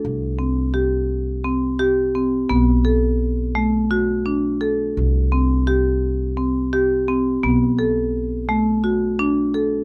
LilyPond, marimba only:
\new Staff \with { instrumentName = "Marimba" } { \time 7/8 \key b \phrygian \tempo 4 = 85 a'8 c'8 g'4 c'8 g'8 c'8 | b8 a'4 a8 fis'8 d'8 a'8~ | a'8 c'8 g'4 c'8 g'8 c'8 | b8 a'4 a8 fis'8 d'8 a'8 | }